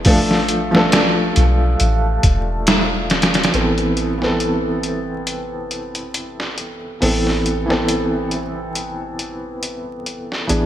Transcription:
0.05 1.33 A1 loud
0.05 0.67 F3 medium
0.05 0.68 A3 medium
0.05 0.68 D4 medium
0.05 0.68 A4 medium
0.05 kick loud
0.05 open hi-hat medium
0.31 snare soft
0.48 closed hi-hat medium
0.71 3.48 F3 medium
0.71 3.49 A3 medium
0.71 3.50 D4 medium
0.71 snare medium
0.76 3.51 A4 loud
0.92 snare loud
0.92 closed hi-hat medium
1.36 1.76 B1 loud
1.36 closed hi-hat medium
1.80 2.19 A1 medium
1.80 closed hi-hat medium
2.23 3.50 E1 medium
2.23 kick loud
2.23 closed hi-hat medium
2.67 snare loud
2.67 closed hi-hat medium
3.10 snare medium
3.10 closed hi-hat medium
3.22 snare medium
3.22 closed hi-hat medium
3.34 snare medium
3.34 closed hi-hat medium
3.43 snare medium
3.43 closed hi-hat medium
3.52 6.98 A1 medium
3.52 4.15 E3 medium
3.52 4.15 B3 medium
3.52 4.16 C4 medium
3.52 4.16 A4 medium
3.52 closed hi-hat medium
3.78 closed hi-hat soft
3.97 closed hi-hat medium
4.18 6.95 E3 medium
4.18 6.96 B3 medium
4.18 6.97 C4 medium
4.18 snare soft
4.24 6.98 A4 medium
4.40 closed hi-hat medium
4.83 closed hi-hat medium
5.27 closed hi-hat medium
5.71 closed hi-hat medium
5.95 closed hi-hat soft
6.14 closed hi-hat medium
6.40 snare soft
6.58 closed hi-hat medium
7.00 10.46 A1 medium
7.00 7.63 E3 medium
7.00 7.63 B3 medium
7.00 7.63 C4 medium
7.00 7.64 A4 medium
7.00 open hi-hat medium
7.27 snare soft
7.46 closed hi-hat medium
7.66 10.43 E3 medium
7.66 10.44 B3 medium
7.66 10.45 C4 medium
7.70 10.46 A4 medium
7.70 snare soft
7.88 closed hi-hat medium
8.31 closed hi-hat medium
8.75 closed hi-hat medium
9.19 closed hi-hat medium
9.63 closed hi-hat medium
10.06 closed hi-hat medium
10.32 snare soft
10.47 10.66 A1 medium
10.47 10.66 E3 medium
10.47 10.66 B3 medium
10.47 10.66 D4 medium
10.47 10.66 G#4 medium
10.47 closed hi-hat medium

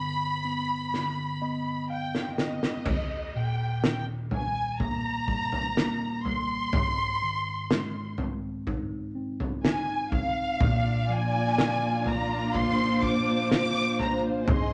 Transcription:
0.00 2.82 G2 medium
0.00 0.92 D3 soft
0.00 0.44 B3 soft
0.00 1.90 B5 medium
0.45 1.40 B3 soft
0.93 2.82 D3 soft
0.93 snare soft
1.42 2.37 B3 soft
1.42 1.86 D#5 medium
1.90 2.35 F5 medium
1.90 2.36 G5 medium
2.15 snare medium
2.38 2.85 B3 soft
2.38 3.36 D#5 medium
2.38 2.83 G5 medium
2.38 snare medium
2.63 snare medium
2.86 6.70 D#2 medium
2.86 kick loud
2.86 floor tom medium
2.86 crash medium
3.35 5.24 A#2 soft
3.35 3.83 G5 medium
3.82 5.72 D#3 soft
3.82 4.04 G5 medium
3.82 snare medium
4.31 5.26 G3 soft
4.31 4.77 G#5 medium
4.31 floor tom medium
4.80 5.75 A#3 soft
4.80 6.26 A#5 medium
4.80 kick medium
4.80 floor tom medium
5.27 6.24 G3 soft
5.27 kick medium
5.52 floor tom medium
5.76 6.70 A#3 medium
5.76 snare medium
6.25 6.72 G3 soft
6.25 8.15 C6 medium
6.25 floor tom medium
6.73 10.57 G#2 medium
6.73 floor tom loud
7.22 9.12 D#3 soft
7.71 9.60 G#3 soft
7.71 snare medium
8.18 9.14 C4 soft
8.18 floor tom medium
8.67 9.63 D#4 soft
8.67 kick medium
8.67 floor tom medium
9.15 10.10 C4 soft
9.40 floor tom medium
9.64 10.58 D#4 medium
9.64 10.10 G#5 medium
9.64 snare medium
10.11 10.59 C4 soft
10.11 11.10 F5 medium
10.11 kick medium
10.11 floor tom medium
10.60 14.44 A#2 medium
10.60 14.44 A#3 medium
10.60 14.44 D4 medium
10.60 14.44 F4 medium
10.60 12.52 D5 medium
10.60 kick loud
10.60 floor tom loud
11.09 12.98 F3 soft
11.09 12.07 G#5 medium
11.57 13.47 A#3 medium
11.57 snare medium
12.06 13.01 D4 soft
12.06 12.55 A#5 medium
12.06 floor tom medium
12.54 13.50 F4 medium
12.54 14.46 C5 medium
12.54 13.04 C6 loud
12.54 kick medium
12.54 floor tom medium
13.02 13.98 D4 medium
13.02 13.52 D6 medium
13.02 kick medium
13.51 14.45 F4 medium
13.51 13.97 D6 loud
13.51 snare loud
13.99 14.46 D4 soft
13.99 14.21 A#5 medium
13.99 floor tom medium
14.47 14.73 G#2 medium
14.47 14.73 C4 medium
14.47 14.73 D#4 medium
14.47 14.73 G#4 medium
14.47 14.73 D#5 medium
14.47 14.73 C6 medium
14.47 floor tom loud

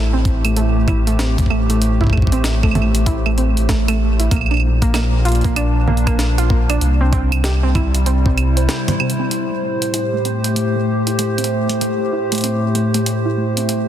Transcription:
0.00 4.29 A1 medium
0.00 4.31 A2 medium
0.00 0.12 A3 medium
0.00 4.31 A3 medium
0.00 0.79 E4 medium
0.00 5.33 G4 medium
0.00 6.81 C5 medium
0.13 0.22 C4 medium
0.25 kick loud
0.25 closed hi-hat soft
0.45 0.55 A3 medium
0.45 closed hi-hat soft
0.45 claves medium
0.56 0.75 A3 medium
0.56 closed hi-hat medium
0.88 1.01 E4 medium
0.88 kick loud
0.88 closed hi-hat soft
0.88 low conga medium
0.88 claves soft
1.07 1.18 A3 medium
1.07 closed hi-hat soft
1.19 1.32 C4 medium
1.19 snare loud
1.19 closed hi-hat medium
1.38 kick loud
1.38 kick medium
1.38 closed hi-hat medium
1.46 kick medium
1.50 1.69 A3 medium
1.50 claves soft
1.70 1.81 A3 medium
1.70 closed hi-hat medium
1.82 closed hi-hat medium
2.01 2.09 E4 medium
2.01 kick medium
2.04 kick medium
2.07 kick medium
2.10 kick medium
2.13 2.31 A3 medium
2.13 kick medium
2.13 claves medium
2.17 kick medium
2.22 kick medium
2.27 kick loud
2.32 2.40 C4 medium
2.32 closed hi-hat soft
2.44 snare loud
2.44 closed hi-hat medium
2.63 2.74 A3 medium
2.63 kick loud
2.63 claves soft
2.71 2.94 A3 medium
2.71 closed hi-hat soft
2.71 low conga medium
2.71 claves soft
2.82 claves soft
2.95 closed hi-hat soft
3.06 3.20 E4 medium
3.06 kick medium
3.06 closed hi-hat medium
3.26 3.37 A3 medium
3.26 claves medium
3.38 3.51 C4 medium
3.38 closed hi-hat soft
3.57 closed hi-hat soft
3.69 3.87 A3 medium
3.69 kick loud
3.69 snare loud
3.69 closed hi-hat medium
3.88 4.00 A3 medium
3.88 closed hi-hat medium
3.88 claves medium
4.20 4.28 E4 medium
4.20 closed hi-hat medium
4.31 6.79 A#1 medium
4.31 6.81 A#2 medium
4.31 4.50 A#3 medium
4.31 kick loud
4.31 closed hi-hat medium
4.31 claves soft
4.36 claves soft
4.41 claves soft
4.46 claves soft
4.51 4.59 D4 medium
4.51 claves soft
4.54 claves soft
4.57 claves soft
4.60 claves soft
4.66 7.83 A#3 medium
4.82 4.93 A#3 medium
4.82 kick loud
4.82 closed hi-hat medium
4.94 5.12 A#3 medium
4.94 snare loud
4.94 closed hi-hat medium
4.94 claves medium
5.13 7.74 D4 medium
5.25 5.39 F4 medium
5.25 closed hi-hat soft
5.28 closed hi-hat soft
5.32 closed hi-hat soft
5.35 closed hi-hat soft
5.41 5.56 A#3 medium
5.41 kick loud
5.41 closed hi-hat soft
5.44 closed hi-hat soft
5.56 5.70 D4 medium
5.56 closed hi-hat medium
5.56 claves medium
5.88 6.06 A#3 medium
5.88 low conga medium
5.97 closed hi-hat soft
6.07 6.18 A#3 medium
6.07 kick loud
6.07 closed hi-hat soft
6.07 claves medium
6.19 snare loud
6.19 closed hi-hat medium
6.38 6.46 F4 medium
6.38 closed hi-hat medium
6.50 6.68 A#3 medium
6.50 kick medium
6.69 6.78 D4 medium
6.69 closed hi-hat medium
6.69 claves medium
6.81 8.69 C2 medium
6.81 9.31 C3 medium
6.81 closed hi-hat medium
7.01 7.11 C4 medium
7.10 9.31 G3 medium
7.10 7.31 C4 medium
7.10 kick loud
7.10 closed hi-hat soft
7.32 closed hi-hat medium
7.32 claves medium
7.44 7.57 G4 medium
7.44 snare loud
7.44 closed hi-hat medium
7.63 7.75 C4 medium
7.75 7.89 E4 medium
7.75 kick loud
7.75 closed hi-hat soft
7.75 low conga medium
7.75 claves medium
7.95 10.48 E4 medium
7.95 13.88 C5 medium
7.95 closed hi-hat medium
8.06 8.24 C4 medium
8.06 closed hi-hat medium
8.26 8.37 C4 medium
8.26 kick loud
8.38 closed hi-hat soft
8.38 claves medium
8.57 8.65 C5 medium
8.57 closed hi-hat medium
8.69 8.82 G4 medium
8.69 snare loud
8.69 closed hi-hat medium
8.88 8.96 C5 medium
8.88 closed hi-hat medium
8.88 low conga medium
9.00 9.08 C3 medium
9.00 claves medium
9.10 closed hi-hat soft
9.19 9.24 C4 medium
9.31 13.88 A2 medium
9.31 closed hi-hat medium
9.50 9.61 A3 medium
9.57 13.88 G4 medium
9.62 9.81 A3 medium
9.82 13.88 A3 medium
9.82 closed hi-hat medium
9.94 10.07 E4 medium
9.94 closed hi-hat medium
10.13 10.24 A3 medium
10.25 10.39 C4 medium
10.25 closed hi-hat soft
10.44 closed hi-hat soft
10.56 10.75 A3 medium
10.56 closed hi-hat medium
10.76 10.87 A3 medium
11.07 11.15 E4 medium
11.07 closed hi-hat soft
11.19 11.37 A3 medium
11.19 closed hi-hat medium
11.38 11.46 C4 medium
11.38 closed hi-hat soft
11.44 closed hi-hat medium
11.69 11.80 A3 medium
11.69 closed hi-hat medium
11.81 12.00 A3 medium
11.81 closed hi-hat medium
12.12 12.26 E4 medium
12.32 12.43 A3 medium
12.32 closed hi-hat soft
12.35 closed hi-hat soft
12.38 closed hi-hat soft
12.41 12.57 C4 medium
12.41 closed hi-hat soft
12.44 closed hi-hat medium
12.75 12.93 A3 medium
12.75 closed hi-hat soft
12.94 13.06 A3 medium
12.94 closed hi-hat soft
13.06 closed hi-hat medium
13.26 13.34 E4 medium
13.37 13.56 A3 medium
13.57 13.65 C4 medium
13.57 closed hi-hat soft
13.69 closed hi-hat medium

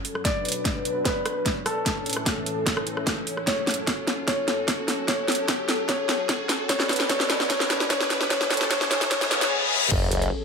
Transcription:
0.00 0.22 F#2 medium
0.00 0.22 F#3 medium
0.00 0.22 C#4 medium
0.00 0.22 A4 medium
0.00 0.17 C#5 medium
0.00 riser medium
0.05 open hi-hat medium
0.15 cross-stick soft
0.25 1.84 B2 medium
0.25 1.84 F#3 medium
0.25 1.84 D4 medium
0.25 1.84 B4 medium
0.25 0.98 D5 medium
0.25 kick medium
0.25 snare medium
0.25 closed hi-hat medium
0.45 closed hi-hat soft
0.49 closed hi-hat medium
0.52 closed hi-hat medium
0.65 kick medium
0.65 snare medium
0.65 closed hi-hat medium
0.85 closed hi-hat medium
1.05 1.58 B4 medium
1.05 kick medium
1.05 snare medium
1.05 closed hi-hat medium
1.26 cross-stick medium
1.26 closed hi-hat medium
1.46 kick medium
1.46 snare medium
1.46 closed hi-hat medium
1.66 3.39 A4 medium
1.66 cross-stick medium
1.66 open hi-hat medium
1.86 3.45 A2 medium
1.86 3.45 E3 medium
1.86 6.65 C#4 medium
1.86 3.45 A4 medium
1.86 kick medium
1.86 snare medium
1.86 closed hi-hat medium
2.06 closed hi-hat soft
2.10 closed hi-hat medium
2.13 cross-stick medium
2.13 closed hi-hat medium
2.26 kick medium
2.26 snare medium
2.26 closed hi-hat medium
2.46 closed hi-hat medium
2.66 kick medium
2.66 snare medium
2.66 closed hi-hat medium
2.77 cross-stick medium
2.87 closed hi-hat soft
2.97 cross-stick medium
3.07 kick medium
3.07 snare medium
3.07 closed hi-hat medium
3.27 open hi-hat medium
3.37 cross-stick soft
3.47 6.66 F#2 medium
3.47 8.26 F#3 medium
3.47 6.66 A4 medium
3.47 4.20 C#5 medium
3.47 kick medium
3.47 snare medium
3.47 closed hi-hat medium
3.67 snare medium
3.67 closed hi-hat soft
3.71 closed hi-hat medium
3.74 closed hi-hat medium
3.87 kick medium
3.87 snare medium
3.87 closed hi-hat medium
4.07 snare medium
4.07 closed hi-hat soft
4.28 5.00 C#5 medium
4.28 kick loud
4.28 snare medium
4.28 closed hi-hat medium
4.48 snare medium
4.48 closed hi-hat soft
4.68 kick loud
4.68 snare medium
4.68 closed hi-hat medium
4.88 snare medium
4.88 open hi-hat medium
5.08 5.81 C#5 medium
5.08 kick medium
5.08 snare medium
5.08 closed hi-hat medium
5.28 snare medium
5.28 closed hi-hat soft
5.32 closed hi-hat medium
5.35 closed hi-hat medium
5.48 kick loud
5.48 snare medium
5.48 closed hi-hat medium
5.69 snare medium
5.69 closed hi-hat soft
5.89 6.61 C#5 medium
5.89 kick loud
5.89 snare medium
5.89 closed hi-hat medium
6.09 snare medium
6.09 closed hi-hat soft
6.29 kick loud
6.29 snare medium
6.29 closed hi-hat medium
6.49 snare medium
6.49 open hi-hat medium
6.69 8.29 B2 medium
6.69 8.29 D4 medium
6.69 8.29 B4 medium
6.69 7.08 C#5 medium
6.69 kick medium
6.69 snare medium
6.69 closed hi-hat medium
6.80 snare medium
6.89 snare medium
6.89 closed hi-hat soft
6.93 closed hi-hat medium
6.96 snare medium
6.96 closed hi-hat medium
7.09 7.48 C#5 medium
7.09 kick loud
7.09 snare loud
7.09 closed hi-hat medium
7.20 snare medium
7.30 snare medium
7.30 closed hi-hat medium
7.40 snare medium
7.50 7.88 C#5 loud
7.50 kick medium
7.50 snare medium
7.50 closed hi-hat medium
7.60 snare medium
7.70 snare medium
7.70 closed hi-hat medium
7.80 snare medium
7.90 8.29 C#5 loud
7.90 kick loud
7.90 snare loud
7.90 closed hi-hat medium
8.00 snare medium
8.10 snare medium
8.10 open hi-hat medium
8.21 snare medium
8.30 9.10 A2 medium
8.30 9.90 E3 medium
8.30 9.10 C#4 medium
8.30 9.10 A4 medium
8.30 8.49 C#5 loud
8.30 kick loud
8.30 snare loud
8.30 closed hi-hat medium
8.41 snare medium
8.50 8.69 C#5 loud
8.50 snare loud
8.50 closed hi-hat soft
8.54 closed hi-hat medium
8.57 snare loud
8.57 closed hi-hat medium
8.70 8.89 C#5 loud
8.70 kick loud
8.70 snare loud
8.70 closed hi-hat medium
8.81 snare medium
8.91 9.09 C#5 loud
8.91 snare loud
8.91 open hi-hat medium
9.01 snare medium
9.11 9.90 E2 medium
9.11 9.91 B3 medium
9.11 9.90 G#4 medium
9.11 9.29 C#5 loud
9.11 kick loud
9.11 snare loud
9.11 closed hi-hat medium
9.11 reverse cymbal medium
9.21 snare medium
9.31 9.50 C#5 loud
9.31 snare loud
9.31 closed hi-hat medium
9.41 snare loud
9.41 closed hi-hat soft
9.91 10.30 F#1 loud
9.91 10.45 F#3 medium
9.91 10.45 C#4 medium
9.91 10.45 G#4 medium
9.91 10.45 A4 medium
9.91 kick loud
9.91 crash loud
9.91 sub drop medium
10.11 closed hi-hat medium
10.22 closed hi-hat soft

